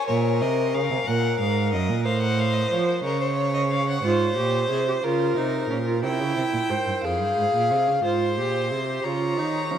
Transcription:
0.08 A#2 A#4 C#5
0.42 C3 D#5
0.74 C#3 F5
0.91 C3
1.07 A#2 A#4 F#5
1.40 G#2 F5
1.72 F#2 D#5
1.89 A#2
2.05 A2 C5 F5
2.22 F#5
2.39 F5
2.54 D#5
2.71 F3 C#5
2.87 C5
3.04 C#3 A#4 C#5
3.21 C5
3.38 C#5
3.54 D#5
3.72 F5
3.89 F#5
4.04 G#2 F4 C5
4.37 A#2 G4
4.70 C3 G#4
4.88 G4
5.04 C#3 F4 A#4
5.37 C3 D#4
5.70 A#2 C#4
5.87 F4
6.03 C3 E4 G5
6.20 C#3
6.36 C3
6.53 A#2
6.70 G#2 C5
6.86 G2
7.03 F2 G#4 F5
7.20 G2
7.37 G#2
7.54 A#2
7.71 C3
7.87 C#3
8.04 G#2 F4 C5 C6
8.37 A#2 G4
8.71 C3 G#4
8.88 G4
9.04 C#3 F4 C#5 A#5
9.38 D#3 D#4
9.71 F3 C#4

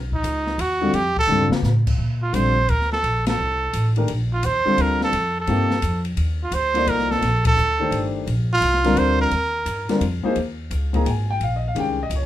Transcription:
Already playing: B1
0.12 D#4, kick
0.23 C#2, hi-hat pedal, ride
0.47 snare
0.58 D#2 F#4, ride
0.81 D3 G3 C4 F4 A4
0.93 F2 G4, ride
1.17 A4, muted upright bass stroke, kick
1.27 G2 D3 G3 C4 F4 A4, mid tom
1.41 mid tom
1.51 muted upright bass stroke, snare
1.62 A2, snare, hi-hat pedal
1.87 kick, crash
1.98 A#2
2.22 F4
2.33 A#1 D3 G3 C4 F4 A4 C5, hi-hat pedal, ride
2.68 D2 A#4, ride
2.81 snare
2.92 A4, snare
3.03 A#1, ride
3.26 A4, snare, ride
3.38 C2
3.73 A1, hi-hat pedal, ride
3.96 D#3 A3 D4 G4 A#4, ride
4.08 A#1, ride
4.33 F4
4.43 D#2 C5, hi-hat pedal, ride
4.65 D3 G3 C4 F4 A4, muted upright bass stroke
4.77 D2, ride
4.82 A#4
5.01 A4, snare
5.13 F2, ride
5.40 A4
5.47 G2 C3 F3 A#3 D#4 G4, ride
5.71 snare
5.82 F2, hi-hat pedal, ride
6.05 ride
6.17 D#2, ride
6.43 F4
6.52 D2 C5, hi-hat pedal, ride
6.74 F3 A#3 D#4 A4 D5, ride
6.87 C2 A#4, ride
6.99 snare
7.11 A4, snare
7.22 A#1, snare, ride
7.45 A4, kick, ride
7.57 D2, hi-hat pedal
7.79 D#3 A3 D4 G4 C5
7.91 G1, ride
8.26 A#1, ride
8.53 F4
8.61 C2, hi-hat pedal, ride
8.74 snare
8.84 D3 G3 C4 F4 A#4, snare, ride
8.96 D2 C5, ride
9.21 A#4
9.31 D#2, ride
9.66 G2, hi-hat pedal, ride
9.89 D3 G3 C4 F4 A#4, muted upright bass stroke, snare, ride
10.00 F2, ride
10.23 F3 A#3 D#4 G#4 C5, muted upright bass stroke
10.36 D#2, ride
10.71 C#2, hi-hat pedal, ride
10.93 F3 A#3 D#4 G#4 A#5, kick, ride
11.05 G#1 G5, ride
11.10 G#5
11.30 G5
11.40 A#1 F5, ride
11.56 D#5
11.68 F5
11.75 C2 D#3 G#3 C#4 G4, ride
11.80 G5
12.03 D#5
12.10 C#2, hi-hat pedal, ride
12.15 C#5
12.22 A#1

